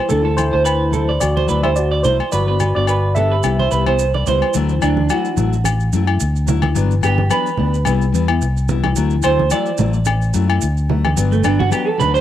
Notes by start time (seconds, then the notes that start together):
0.08 D2 F#3 A3 D4 E4 A4, low conga, maracas
0.22 A3 E4 A4
0.37 E4 C5, high conga, low agogo, maracas
0.50 D2 A3 E4 C5
0.65 B4, low agogo, maracas
0.90 F#3 A3 E4 A4, low conga, maracas
1.09 D5
1.20 D2 F#4 D5, high conga, low agogo, maracas
1.37 C5, high conga
1.47 D2 F#3 A3 E4 B4, maracas
1.63 A3 E4 G4 C5 E5, high conga, low agogo
1.76 F#4 D5, maracas
1.92 D5
2.03 C2 F#3 A3 E4 C5, low conga, maracas
2.20 low agogo
2.32 G1 F#3 F#4 B4 D5, muted steel-string acoustic guitar stroke, maracas
2.47 B3 D4 B4
2.60 low conga, low agogo, maracas
2.75 G1 B3 D4 F#4 D5
2.87 B4, low agogo, maracas
3.15 B3 D4 G4 A4 E5, muted steel-string acoustic guitar stroke, low conga, maracas
3.31 B4
3.42 C2 G3 B3 E4, high conga, low agogo, maracas
3.59 C5, high conga
3.71 C2 G3 B3 E4 B4, maracas
3.86 B3 E4 C5, high conga, low agogo
3.99 maracas
4.14 D5, high conga
4.26 C#2 G3 B3 E4 C5, low conga, maracas
4.42 low agogo
4.54 D2 F#3 A3 E4, maracas
4.69 maracas
4.81 D2 F#3 A3 D4 E4, low agogo, maracas
4.97 high conga
5.09 F#3 A3 E4 F#4, low agogo, maracas
5.25 maracas
5.36 A1 F#3 A3 E4, low conga, maracas
5.53 maracas
5.64 high conga, low agogo, maracas
5.80 maracas
5.93 F#2 F#3 A3 E4, maracas
6.06 A3 E4, low agogo
6.20 D2, maracas
6.36 maracas
6.46 F#3 E4, muted steel-string acoustic guitar stroke, low conga, maracas
6.62 high conga, low agogo
6.75 G1 F#3 B3 D4, maracas
6.91 maracas
7.01 G1 F#3 B3 D4 G4, low agogo, maracas
7.18 high conga
7.29 F#3 B3 D4 B4, low agogo, maracas
7.46 maracas
7.57 D2 B3 D4, low conga
7.74 maracas
7.85 C2 G3 B3 E4, high conga, low agogo, maracas
8.02 maracas
8.12 E2 G3 B3 E4, maracas
8.28 B3 E4, low agogo
8.42 C2, maracas
8.57 maracas
8.68 G3 B3 E4, low conga, maracas
8.84 high conga, low agogo
8.96 D2 F#3 A3 E4, maracas
9.10 maracas
9.22 D2 F#3 A3 E4 C5, low agogo, maracas
9.39 high conga
9.50 F#3 A3 E4 D5, low agogo, maracas
9.66 maracas
9.78 A1 F#3 A3 E4, low conga, maracas
9.93 maracas
10.05 high conga, low agogo, maracas
10.22 maracas
10.34 F#2 F#3 A3 E4, maracas
10.48 A3 E4, low agogo
10.61 D2, maracas
10.77 maracas
10.89 F#3 A3, low conga
11.05 high conga, low agogo
11.16 G1 F#3 B3 D4, maracas
11.32 A3, maracas
11.43 G1 F#3 B3 D4, low agogo, maracas
11.59 F#4, high conga, low conga
11.70 F#3 B3 D4 G4, low agogo, maracas
11.88 A4
11.98 D2 F#3 D4 B4, high conga, low conga, maracas
12.14 C5, maracas